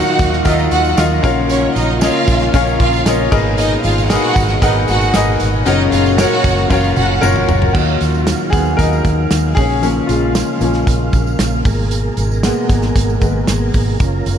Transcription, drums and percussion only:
0.19 kick, closed hi-hat, tambourine
0.33 snare
0.45 kick, closed hi-hat, tambourine
0.59 tambourine
0.71 closed hi-hat, tambourine
0.85 tambourine
0.97 snare, closed hi-hat, tambourine
1.23 kick, closed hi-hat, tambourine
1.49 closed hi-hat, tambourine
1.76 closed hi-hat, tambourine
2.01 snare, closed hi-hat, tambourine
2.27 kick, closed hi-hat, tambourine
2.39 snare, tambourine
2.54 kick, closed hi-hat, tambourine
2.67 tambourine
2.80 kick, closed hi-hat, tambourine
2.93 tambourine
3.06 snare, closed hi-hat, tambourine
3.32 kick, tambourine, crash
3.58 closed hi-hat, tambourine
3.84 closed hi-hat, tambourine
3.98 tambourine
4.10 snare, closed hi-hat, tambourine
4.36 kick, closed hi-hat, tambourine
4.48 snare, tambourine
4.62 kick, closed hi-hat, tambourine
4.88 closed hi-hat, tambourine
5.01 tambourine
5.14 snare, closed hi-hat, tambourine
5.40 closed hi-hat, tambourine
5.66 closed hi-hat, tambourine
5.92 closed hi-hat, tambourine
6.06 tambourine
6.18 snare, closed hi-hat, tambourine
6.44 kick, closed hi-hat, tambourine
6.57 snare
6.70 kick, high tom, tambourine
6.84 tambourine
6.96 mid tom, tambourine
7.23 mid tom, tambourine
7.36 mid tom
7.49 floor tom, tambourine
7.62 floor tom
7.75 kick, crash, tambourine
8.01 closed hi-hat, tambourine
8.14 tambourine
8.27 snare, closed hi-hat, tambourine
8.53 kick, closed hi-hat, tambourine
8.65 tambourine
8.79 kick, closed hi-hat, tambourine
8.93 tambourine
9.05 kick, closed hi-hat, tambourine
9.31 snare, closed hi-hat, tambourine
9.57 kick, open hi-hat, tambourine
9.83 closed hi-hat, tambourine
10.09 closed hi-hat, tambourine
10.35 snare, closed hi-hat, tambourine
10.61 closed hi-hat, tambourine
10.73 snare, tambourine
10.87 kick, closed hi-hat, tambourine
11.13 kick, closed hi-hat, tambourine
11.27 tambourine
11.39 snare, closed hi-hat, tambourine
11.65 kick, open hi-hat, tambourine
11.91 closed hi-hat, tambourine
12.17 closed hi-hat, tambourine
12.31 tambourine
12.43 snare, closed hi-hat, tambourine
12.69 kick, closed hi-hat, tambourine
12.82 snare, tambourine
12.96 kick, closed hi-hat, tambourine
13.10 tambourine
13.21 kick, closed hi-hat, tambourine
13.47 snare, closed hi-hat, tambourine
13.74 kick, open hi-hat, tambourine
14.00 kick, closed hi-hat, tambourine
14.26 closed hi-hat, tambourine

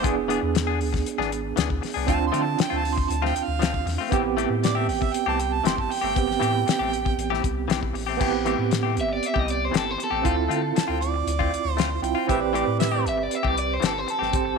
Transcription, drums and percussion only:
0.04 kick, closed hi-hat
0.30 closed hi-hat
0.55 snare, closed hi-hat
0.81 open hi-hat
0.94 kick, snare
1.06 closed hi-hat
1.21 snare
1.32 closed hi-hat
1.57 snare, closed hi-hat
1.70 kick
1.83 snare, open hi-hat
2.08 kick, closed hi-hat
2.34 closed hi-hat
2.59 snare, closed hi-hat
2.85 open hi-hat
2.98 kick
3.11 closed hi-hat
3.25 snare
3.36 closed hi-hat
3.62 snare, closed hi-hat
3.74 kick
3.87 snare, open hi-hat
4.12 kick, closed hi-hat
4.38 closed hi-hat
4.64 snare, closed hi-hat
4.89 open hi-hat
5.02 kick
5.14 closed hi-hat
5.40 closed hi-hat
5.65 snare, closed hi-hat
5.78 kick
5.91 open hi-hat
6.16 kick, closed hi-hat
6.31 snare
6.43 closed hi-hat
6.68 snare, closed hi-hat
6.93 closed hi-hat
7.06 kick
7.19 closed hi-hat
7.34 snare
7.44 kick, closed hi-hat
7.70 snare, closed hi-hat
7.83 kick
7.95 open hi-hat
8.21 kick, crash
8.46 closed hi-hat
8.71 snare, closed hi-hat
8.97 closed hi-hat
9.23 closed hi-hat
9.36 kick
9.48 closed hi-hat
9.74 snare, closed hi-hat
10.00 closed hi-hat
10.25 kick, closed hi-hat
10.51 closed hi-hat
10.76 snare, closed hi-hat
11.02 closed hi-hat
11.27 closed hi-hat
11.40 kick
11.54 closed hi-hat
11.78 snare, closed hi-hat
12.04 closed hi-hat
12.29 kick, closed hi-hat
12.55 closed hi-hat
12.80 snare, closed hi-hat
13.06 closed hi-hat
13.31 closed hi-hat
13.44 kick
13.57 closed hi-hat
13.82 snare, closed hi-hat
14.08 closed hi-hat
14.22 snare
14.33 kick, closed hi-hat

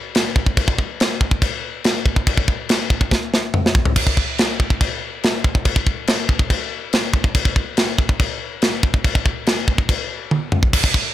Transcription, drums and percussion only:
0.15 snare, china
0.36 kick
0.46 kick
0.57 kick, china
0.68 kick
0.79 kick
1.00 snare, china
1.21 kick
1.31 kick
1.42 kick, china
1.84 snare, china
2.06 kick
2.16 kick
2.27 kick, china
2.37 kick
2.48 kick
2.69 snare, china
2.90 kick
3.01 kick
3.11 kick, snare
3.34 snare
3.54 mid tom
3.66 snare
3.75 kick
3.85 floor tom
3.96 kick, crash, china
4.07 kick
4.17 kick
4.38 snare, china
4.60 kick
4.70 kick
4.81 kick, china
5.23 snare, china
5.44 kick
5.55 kick
5.65 kick, china
5.76 kick
5.87 kick
6.07 snare, china
6.29 kick
6.39 kick
6.50 kick, china
6.93 snare, china
7.14 kick
7.24 kick
7.35 kick, china
7.45 kick
7.56 kick
7.77 snare, china
7.98 kick
8.09 kick
8.20 kick, china
8.62 snare, china
8.83 kick
8.94 kick
9.04 kick, china
9.15 kick
9.26 kick
9.47 snare, china
9.68 kick
9.78 kick
9.89 kick, china
10.31 high tom
10.52 mid tom
10.63 kick
10.73 kick, crash, china
10.84 kick
10.94 kick

